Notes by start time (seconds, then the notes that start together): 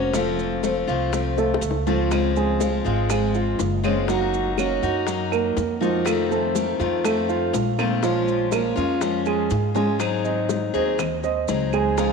Already playing: F1 A#3 C#4 F#4 C5
0.13 C3 F3 A3 C4 F4, high bongo, high conga, maracas
0.39 high conga, maracas
0.63 F3 A3 C4 F4 C5, high bongo, high conga, maracas
0.87 C2 F3 A3 C4 F4 F5, high bongo, high conga, maracas
1.12 F3 A3 C4 F4, high bongo, high conga, maracas
1.38 A3 A4, high bongo, high conga, maracas
1.54 high bongo
1.61 C#2, muted steel-string acoustic guitar stroke, high conga, maracas
1.71 low bongo
1.87 F3 A3 C4 F4, low bongo, high conga, maracas
2.11 C#3 F3 G#3 C4 F4, high bongo, high conga, claves, maracas
2.36 G#3 G#4, maracas
2.60 F3 G#3 C4 F4, high bongo, high conga, maracas
2.84 G#1 F3 G#3 C4 F4 F5, high bongo, maracas
3.09 F3 G#3 C4 F4 G#4, high bongo, high conga, claves, maracas
3.35 F4 F5, high bongo, high conga, maracas
3.59 F#1, muted steel-string acoustic guitar stroke, high bongo, low bongo, high conga, maracas
3.84 F3 G#3 C4 C#4 F4 C#5, high bongo, high conga, claves, maracas
4.08 F#3 A#3 D#4 F#4, high bongo, high conga, maracas
4.33 high conga, maracas
4.58 F#3 A#3 C#4 D#4 F#4 C#5, high bongo, high conga, claves, maracas
4.82 F#2 A#3 D#4 F#4 F#5, high bongo, high conga, maracas
5.07 F#3 A#3 D#4 F#4, high bongo, high conga, maracas
5.31 A#3 A#4, high bongo, high conga, claves, maracas
5.57 F2, muted steel-string acoustic guitar stroke, high bongo, low bongo, high conga, maracas
5.81 F3 A#3 D#4 F4 F#4, high bongo, high conga, maracas
6.05 C3 D#3 A3 C4 F4, high bongo, high conga, claves, maracas
6.31 A3 A4, high conga, maracas
6.55 D#3 A3 C4 F4, high bongo, high conga, maracas
6.79 F2 D#3 A3 C4 F4 F5, high bongo, high conga, maracas
7.04 D#3 A3 C4 F4 A4, high bongo, high conga, claves, maracas
7.29 F4 F5, high bongo, high conga, maracas
7.53 A#1, muted steel-string acoustic guitar stroke, high bongo, low bongo, high conga, maracas
7.78 D#3 A3 A#3 C4 F4 A#4, high bongo, high conga, claves, maracas
8.03 F3 G#3 C#4 F4, high bongo, maracas
8.28 high conga, maracas
8.51 F3 G#3 A#3 C#4 F4 A#4, high bongo, high conga, claves, maracas
8.76 F2 G#3 C#4 F4 F5, high bongo, high conga, maracas
9.01 F3 G#3 C#4 F4, high bongo, high conga, maracas
9.26 G#3 G#4, high bongo, high conga, claves, maracas
9.50 G#2, muted steel-string acoustic guitar stroke, high bongo, low bongo, high conga, maracas
9.74 G#3 C#4 F4 G#4, high bongo, high conga, maracas
9.99 D#3 F#3 C4 D#4 G#4, high bongo, high conga, claves, maracas
10.24 C4 C5 D#5, high conga, maracas
10.49 high bongo, high conga, maracas
10.74 D#2 F#3 C4 D#4 G#4 C5 D#5, high bongo, high conga, maracas
10.99 muted steel-string acoustic guitar stroke, high bongo, high conga, low conga, claves, maracas
11.23 C4 C5 D#5, high bongo, high conga, maracas
11.48 C#2 F#3 C4 D#4 G#4, high bongo, low bongo, high conga, maracas
11.73 G#3 G#4 G#5, high bongo, claves, maracas
11.97 C#3 F3 G#3 D#4 F4 G#4 G#5, high bongo, high conga, maracas